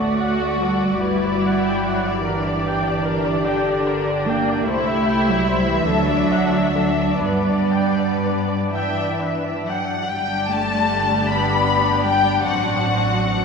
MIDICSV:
0, 0, Header, 1, 6, 480
1, 0, Start_track
1, 0, Tempo, 833333
1, 828, Tempo, 810811
1, 1311, Time_signature, 6, 3, 24, 8
1, 3708, Tempo, 924499
1, 4188, Tempo, 988468
1, 5148, Tempo, 883652
1, 5628, Tempo, 780234
1, 7696, End_track
2, 0, Start_track
2, 0, Title_t, "Violin section"
2, 0, Program_c, 0, 48
2, 0, Note_on_c, 0, 74, 35
2, 2720, Note_off_c, 0, 74, 0
2, 2746, Note_on_c, 0, 76, 52
2, 4170, Note_off_c, 0, 76, 0
2, 4190, Note_on_c, 0, 74, 38
2, 4871, Note_off_c, 0, 74, 0
2, 4912, Note_on_c, 0, 76, 41
2, 4912, Note_on_c, 0, 79, 37
2, 5130, Note_off_c, 0, 79, 0
2, 5142, Note_off_c, 0, 76, 0
2, 5148, Note_on_c, 0, 76, 34
2, 5398, Note_off_c, 0, 76, 0
2, 5402, Note_on_c, 0, 78, 28
2, 5403, Note_off_c, 0, 78, 0
2, 5403, Note_on_c, 0, 78, 41
2, 5626, Note_on_c, 0, 79, 53
2, 5633, Note_off_c, 0, 78, 0
2, 5875, Note_off_c, 0, 79, 0
2, 5878, Note_on_c, 0, 81, 62
2, 6362, Note_off_c, 0, 81, 0
2, 6367, Note_on_c, 0, 83, 56
2, 6842, Note_off_c, 0, 83, 0
2, 6848, Note_on_c, 0, 79, 54
2, 7079, Note_off_c, 0, 79, 0
2, 7084, Note_on_c, 0, 78, 52
2, 7696, Note_off_c, 0, 78, 0
2, 7696, End_track
3, 0, Start_track
3, 0, Title_t, "Viola section"
3, 0, Program_c, 1, 48
3, 0, Note_on_c, 1, 66, 39
3, 0, Note_on_c, 1, 74, 33
3, 110, Note_off_c, 1, 74, 0
3, 112, Note_on_c, 1, 78, 37
3, 231, Note_on_c, 1, 74, 33
3, 233, Note_off_c, 1, 78, 0
3, 352, Note_off_c, 1, 74, 0
3, 353, Note_on_c, 1, 69, 34
3, 472, Note_on_c, 1, 74, 36
3, 473, Note_off_c, 1, 69, 0
3, 592, Note_off_c, 1, 74, 0
3, 596, Note_on_c, 1, 71, 40
3, 705, Note_off_c, 1, 71, 0
3, 708, Note_on_c, 1, 74, 36
3, 827, Note_off_c, 1, 74, 0
3, 829, Note_on_c, 1, 78, 33
3, 949, Note_off_c, 1, 78, 0
3, 949, Note_on_c, 1, 79, 35
3, 1068, Note_on_c, 1, 78, 37
3, 1069, Note_off_c, 1, 79, 0
3, 1189, Note_off_c, 1, 78, 0
3, 1191, Note_on_c, 1, 74, 33
3, 1285, Note_off_c, 1, 66, 0
3, 1308, Note_on_c, 1, 70, 39
3, 1309, Note_on_c, 1, 67, 44
3, 1312, Note_off_c, 1, 74, 0
3, 1421, Note_off_c, 1, 70, 0
3, 1430, Note_on_c, 1, 74, 35
3, 1549, Note_off_c, 1, 74, 0
3, 1553, Note_on_c, 1, 79, 41
3, 1670, Note_off_c, 1, 79, 0
3, 1670, Note_on_c, 1, 74, 41
3, 1781, Note_on_c, 1, 70, 39
3, 1787, Note_off_c, 1, 74, 0
3, 1902, Note_off_c, 1, 70, 0
3, 1903, Note_on_c, 1, 74, 45
3, 2023, Note_off_c, 1, 74, 0
3, 2024, Note_on_c, 1, 79, 45
3, 2142, Note_on_c, 1, 74, 42
3, 2144, Note_off_c, 1, 79, 0
3, 2263, Note_on_c, 1, 70, 44
3, 2264, Note_off_c, 1, 74, 0
3, 2385, Note_off_c, 1, 70, 0
3, 2388, Note_on_c, 1, 74, 41
3, 2507, Note_off_c, 1, 74, 0
3, 2511, Note_on_c, 1, 79, 46
3, 2628, Note_off_c, 1, 79, 0
3, 2631, Note_on_c, 1, 74, 42
3, 2746, Note_off_c, 1, 74, 0
3, 2748, Note_on_c, 1, 72, 51
3, 2855, Note_off_c, 1, 72, 0
3, 2863, Note_on_c, 1, 76, 49
3, 2979, Note_on_c, 1, 79, 47
3, 2980, Note_off_c, 1, 76, 0
3, 3097, Note_off_c, 1, 79, 0
3, 3098, Note_on_c, 1, 76, 46
3, 3216, Note_off_c, 1, 76, 0
3, 3221, Note_on_c, 1, 72, 46
3, 3338, Note_off_c, 1, 72, 0
3, 3341, Note_on_c, 1, 76, 50
3, 3432, Note_off_c, 1, 67, 0
3, 3460, Note_off_c, 1, 76, 0
3, 3461, Note_on_c, 1, 62, 56
3, 3461, Note_on_c, 1, 69, 55
3, 3575, Note_off_c, 1, 69, 0
3, 3588, Note_on_c, 1, 74, 49
3, 3713, Note_off_c, 1, 74, 0
3, 3714, Note_on_c, 1, 78, 44
3, 3827, Note_off_c, 1, 78, 0
3, 3827, Note_on_c, 1, 74, 40
3, 3945, Note_off_c, 1, 74, 0
3, 3948, Note_on_c, 1, 69, 39
3, 4063, Note_on_c, 1, 74, 35
3, 4068, Note_off_c, 1, 69, 0
3, 4188, Note_off_c, 1, 74, 0
3, 4192, Note_on_c, 1, 71, 41
3, 4300, Note_off_c, 1, 71, 0
3, 4307, Note_on_c, 1, 74, 36
3, 4425, Note_on_c, 1, 79, 34
3, 4428, Note_off_c, 1, 74, 0
3, 4549, Note_off_c, 1, 79, 0
3, 4552, Note_on_c, 1, 74, 32
3, 4672, Note_on_c, 1, 71, 30
3, 4676, Note_off_c, 1, 74, 0
3, 4797, Note_off_c, 1, 71, 0
3, 4798, Note_on_c, 1, 74, 33
3, 4917, Note_on_c, 1, 79, 33
3, 4918, Note_off_c, 1, 74, 0
3, 5031, Note_on_c, 1, 74, 29
3, 5034, Note_off_c, 1, 79, 0
3, 5147, Note_off_c, 1, 74, 0
3, 5148, Note_on_c, 1, 71, 27
3, 5271, Note_on_c, 1, 74, 29
3, 5274, Note_off_c, 1, 71, 0
3, 5395, Note_on_c, 1, 79, 29
3, 5397, Note_off_c, 1, 74, 0
3, 5502, Note_off_c, 1, 62, 0
3, 5516, Note_off_c, 1, 79, 0
3, 5516, Note_on_c, 1, 74, 28
3, 5626, Note_on_c, 1, 62, 50
3, 5629, Note_off_c, 1, 74, 0
3, 5630, Note_on_c, 1, 55, 44
3, 7055, Note_off_c, 1, 55, 0
3, 7083, Note_on_c, 1, 60, 40
3, 7696, Note_off_c, 1, 60, 0
3, 7696, Note_off_c, 1, 62, 0
3, 7696, End_track
4, 0, Start_track
4, 0, Title_t, "Violin section"
4, 0, Program_c, 2, 48
4, 0, Note_on_c, 2, 66, 47
4, 567, Note_off_c, 2, 66, 0
4, 592, Note_on_c, 2, 64, 44
4, 1310, Note_off_c, 2, 64, 0
4, 1316, Note_on_c, 2, 62, 53
4, 2722, Note_off_c, 2, 62, 0
4, 2745, Note_on_c, 2, 64, 68
4, 3454, Note_on_c, 2, 62, 58
4, 3458, Note_off_c, 2, 64, 0
4, 4174, Note_off_c, 2, 62, 0
4, 4186, Note_on_c, 2, 59, 42
4, 5251, Note_off_c, 2, 59, 0
4, 5627, Note_on_c, 2, 74, 42
4, 5629, Note_on_c, 2, 67, 46
4, 7054, Note_off_c, 2, 67, 0
4, 7074, Note_on_c, 2, 66, 44
4, 7696, Note_off_c, 2, 66, 0
4, 7696, Note_off_c, 2, 74, 0
4, 7696, End_track
5, 0, Start_track
5, 0, Title_t, "Cello section"
5, 0, Program_c, 3, 48
5, 0, Note_on_c, 3, 57, 53
5, 346, Note_on_c, 3, 55, 55
5, 349, Note_off_c, 3, 57, 0
5, 1066, Note_off_c, 3, 55, 0
5, 1067, Note_on_c, 3, 54, 48
5, 1305, Note_off_c, 3, 54, 0
5, 1305, Note_on_c, 3, 52, 54
5, 2007, Note_off_c, 3, 52, 0
5, 2018, Note_on_c, 3, 50, 64
5, 2503, Note_off_c, 3, 50, 0
5, 2506, Note_on_c, 3, 58, 67
5, 2743, Note_off_c, 3, 58, 0
5, 2743, Note_on_c, 3, 57, 65
5, 3097, Note_off_c, 3, 57, 0
5, 3102, Note_on_c, 3, 54, 66
5, 3215, Note_on_c, 3, 55, 73
5, 3218, Note_off_c, 3, 54, 0
5, 3335, Note_off_c, 3, 55, 0
5, 3341, Note_on_c, 3, 52, 65
5, 3454, Note_on_c, 3, 54, 74
5, 3458, Note_off_c, 3, 52, 0
5, 3936, Note_off_c, 3, 54, 0
5, 3942, Note_on_c, 3, 54, 55
5, 4183, Note_off_c, 3, 54, 0
5, 4189, Note_on_c, 3, 55, 48
5, 4918, Note_off_c, 3, 55, 0
5, 4920, Note_on_c, 3, 52, 40
5, 5378, Note_off_c, 3, 52, 0
5, 5400, Note_on_c, 3, 54, 34
5, 5626, Note_off_c, 3, 54, 0
5, 5635, Note_on_c, 3, 55, 50
5, 5880, Note_off_c, 3, 55, 0
5, 5880, Note_on_c, 3, 57, 54
5, 6363, Note_off_c, 3, 57, 0
5, 6369, Note_on_c, 3, 59, 52
5, 6842, Note_off_c, 3, 59, 0
5, 6843, Note_on_c, 3, 55, 44
5, 7082, Note_off_c, 3, 55, 0
5, 7084, Note_on_c, 3, 54, 51
5, 7696, Note_off_c, 3, 54, 0
5, 7696, End_track
6, 0, Start_track
6, 0, Title_t, "Double bass section"
6, 0, Program_c, 4, 48
6, 0, Note_on_c, 4, 38, 40
6, 567, Note_off_c, 4, 38, 0
6, 592, Note_on_c, 4, 31, 41
6, 2742, Note_on_c, 4, 36, 53
6, 2743, Note_off_c, 4, 31, 0
6, 3456, Note_off_c, 4, 36, 0
6, 3457, Note_on_c, 4, 38, 52
6, 4176, Note_off_c, 4, 38, 0
6, 4190, Note_on_c, 4, 43, 43
6, 5523, Note_off_c, 4, 43, 0
6, 5634, Note_on_c, 4, 31, 46
6, 7057, Note_off_c, 4, 31, 0
6, 7085, Note_on_c, 4, 33, 46
6, 7696, Note_off_c, 4, 33, 0
6, 7696, End_track
0, 0, End_of_file